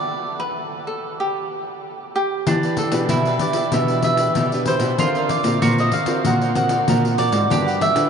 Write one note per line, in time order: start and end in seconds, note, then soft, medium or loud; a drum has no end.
0.00 0.39 D5 medium
0.40 0.85 B4 medium
0.87 1.21 A4 medium
1.20 1.80 G4 medium
2.16 2.80 G4 medium
2.46 3.07 E3 medium
2.46 2.87 E3 medium
2.46 2.89 D4 medium
2.46 3.12 D4 medium
2.46 2.61 E4 soft
2.46 2.61 G4 soft
2.46 2.89 G4 medium
2.46 2.62 B4 medium
2.46 2.90 B4 medium
2.46 2.62 D5 soft
2.46 pandeiro medium
2.63 2.76 G4 soft
2.63 2.76 B4 medium
2.63 2.77 D5 medium
2.63 pandeiro soft
2.77 3.27 A4 medium
2.77 muted cavaquinho stroke soft
2.77 pandeiro medium
2.91 3.06 B2 medium
2.91 3.35 D4 medium
2.91 3.35 G4 medium
2.91 3.08 G4 soft
2.91 3.08 B4 medium
2.91 3.36 B4 medium
2.91 3.07 D5 medium
2.91 pandeiro medium
3.09 3.37 B2 medium
3.09 3.70 B2 medium
3.09 3.24 E4 soft
3.09 4.99 E4 medium
3.09 3.24 G4 soft
3.09 3.25 B4 soft
3.09 3.25 D5 medium
3.09 pandeiro medium
3.25 3.56 G4 medium
3.25 3.43 B4 medium
3.25 3.55 B4 medium
3.25 3.54 D5 medium
3.25 pandeiro soft
3.39 3.60 D4 soft
3.39 3.60 G4 soft
3.39 3.60 B4 soft
3.39 3.74 D5 medium
3.39 pandeiro medium
3.53 3.72 G4 soft
3.53 3.71 B4 medium
3.53 3.71 D5 medium
3.53 pandeiro medium
3.72 4.27 B2 medium
3.72 4.32 E3 medium
3.72 3.99 D4 soft
3.72 3.87 E4 soft
3.72 3.99 G4 soft
3.72 3.88 G4 soft
3.72 4.00 B4 medium
3.72 3.88 B4 soft
3.72 3.88 D5 medium
3.72 4.03 E5 medium
3.72 pandeiro medium
3.88 4.02 G4 soft
3.88 4.03 B4 medium
3.88 4.03 D5 medium
3.88 pandeiro soft
4.02 4.46 D4 soft
4.02 4.47 G4 medium
4.02 4.47 B4 medium
4.02 4.69 E5 medium
4.02 muted cavaquinho stroke soft
4.02 pandeiro medium
4.17 4.34 G4 medium
4.17 4.34 B4 medium
4.17 4.34 D5 medium
4.17 pandeiro medium
4.35 4.76 B2 medium
4.35 4.96 B2 medium
4.35 4.65 E4 medium
4.35 4.66 G4 medium
4.35 4.66 B4 medium
4.35 4.67 D5 medium
4.35 pandeiro medium
4.52 4.95 D4 medium
4.52 4.95 G4 medium
4.52 4.95 B4 medium
4.52 pandeiro soft
4.66 4.81 E4 soft
4.66 4.81 G4 medium
4.66 4.80 B4 medium
4.66 5.26 C5 medium
4.66 4.79 D5 medium
4.66 pandeiro medium
4.80 4.95 B2 medium
4.80 4.97 G4 soft
4.80 4.97 B4 medium
4.80 4.96 D5 medium
4.80 pandeiro medium
4.98 5.39 D3 medium
4.98 5.59 D3 medium
4.98 5.41 C4 medium
4.98 5.62 F4 medium
4.98 5.14 F#4 soft
4.98 5.42 A#4 medium
4.98 5.14 A#4 soft
4.98 5.15 C5 medium
4.98 5.15 D5 soft
4.98 pandeiro medium
5.15 5.29 A#4 medium
5.15 5.30 C5 medium
5.15 5.30 D5 medium
5.15 pandeiro soft
5.29 5.74 D5 medium
5.29 muted cavaquinho stroke soft
5.29 pandeiro medium
5.43 5.58 A#2 medium
5.43 6.03 C4 medium
5.43 6.03 F#4 medium
5.43 6.03 A#4 medium
5.43 5.61 A#4 soft
5.43 5.60 C5 medium
5.43 5.60 D5 medium
5.43 pandeiro medium
5.62 5.89 A#2 medium
5.62 6.22 D3 medium
5.62 5.76 F#4 soft
5.62 7.47 F#4 medium
5.62 5.77 A#4 medium
5.62 5.77 C5 soft
5.62 5.77 D5 soft
5.62 pandeiro medium
5.78 6.07 A#4 medium
5.78 6.06 C5 medium
5.78 6.05 D5 medium
5.78 5.93 D#5 medium
5.78 pandeiro soft
5.92 6.23 F5 medium
5.92 pandeiro medium
6.06 6.50 C4 medium
6.06 6.50 F#4 medium
6.06 6.50 A#4 medium
6.06 6.23 A#4 soft
6.06 6.23 C5 medium
6.06 6.22 D5 medium
6.06 pandeiro medium
6.24 6.78 A#2 medium
6.24 6.85 D3 medium
6.24 6.40 F#4 medium
6.24 6.40 A#4 medium
6.24 6.40 C5 soft
6.24 6.40 D5 soft
6.24 6.55 F#5 medium
6.24 pandeiro medium
6.41 6.56 A#4 soft
6.41 6.56 C5 medium
6.41 6.56 D5 medium
6.41 pandeiro soft
6.55 6.74 C4 medium
6.55 6.74 F#4 medium
6.55 6.75 A#4 medium
6.55 7.15 F#5 loud
6.55 muted cavaquinho stroke soft
6.55 pandeiro medium
6.69 6.87 A#4 medium
6.69 6.86 C5 medium
6.69 6.86 D5 medium
6.69 pandeiro medium
6.88 7.28 A#2 medium
6.88 7.48 D3 medium
6.88 7.06 C4 medium
6.88 7.16 F#4 medium
6.88 7.07 F#4 medium
6.88 7.07 A#4 medium
6.88 7.17 A#4 medium
6.88 7.17 C5 medium
6.88 7.18 D5 medium
6.88 pandeiro medium
7.05 pandeiro soft
7.17 7.45 C4 soft
7.17 7.33 F#4 soft
7.17 7.46 F#4 soft
7.17 7.32 A#4 medium
7.17 7.46 A#4 medium
7.17 7.32 C5 medium
7.17 7.84 D5 medium
7.17 7.31 D5 medium
7.17 pandeiro medium
7.32 7.47 G#2 medium
7.32 7.49 A#4 medium
7.32 7.48 C5 medium
7.32 7.48 D5 medium
7.32 pandeiro medium
7.50 7.91 G2 medium
7.50 8.10 G3 medium
7.50 7.65 D4 soft
7.50 7.81 D4 medium
7.50 7.81 F#4 medium
7.50 7.66 G4 medium
7.50 8.10 G4 medium
7.50 7.66 B4 medium
7.50 7.81 B4 medium
7.50 7.65 F#5 medium
7.50 pandeiro medium
7.66 7.79 G4 soft
7.66 7.80 B4 medium
7.66 7.79 F#5 medium
7.66 pandeiro soft
7.80 8.10 E5 medium
7.80 muted cavaquinho stroke soft
7.80 pandeiro medium
7.94 8.10 D3 medium
7.94 8.10 D4 medium
7.94 8.10 G4 soft
7.94 8.10 B4 medium
7.94 8.10 F#5 medium
7.94 pandeiro medium